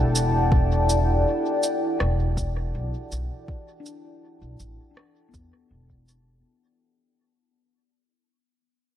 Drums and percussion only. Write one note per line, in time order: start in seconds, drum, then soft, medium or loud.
0.15 cabasa medium
0.52 kick loud
0.89 cabasa soft
1.63 cabasa soft
2.00 cross-stick medium
2.37 kick loud
2.37 cabasa soft
3.12 cabasa soft
3.48 kick loud
3.86 cabasa soft
4.60 cabasa soft
4.97 cross-stick medium
5.34 kick medium
5.34 cabasa soft
5.90 kick medium
6.08 cabasa soft